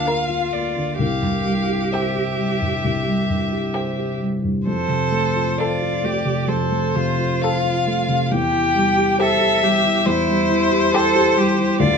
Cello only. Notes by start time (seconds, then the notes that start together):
0.06 F4
1.01 G4
4.68 A4
5.59 F4
6.05 G4
6.48 A4
6.95 F4
8.33 G4
9.22 A4
9.63 G4
10.08 E4
10.94 A4
11.38 G4
11.80 F4